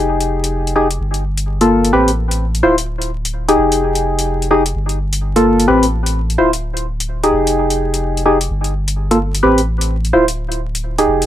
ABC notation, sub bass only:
X:1
M:4/4
L:1/8
Q:"Swing 16ths" 1/4=128
K:Dmix
V:1 name="Sub bass" clef=bass
=F,,,4 G,,,4 | A,,,3 D,,,4 =F,,,- | =F,,,4 G,,,4 | A,,,3 D,,,4 =F,,,- |
=F,,,4 G,,,4 | A,,,3 D,,,4 =F,,, |]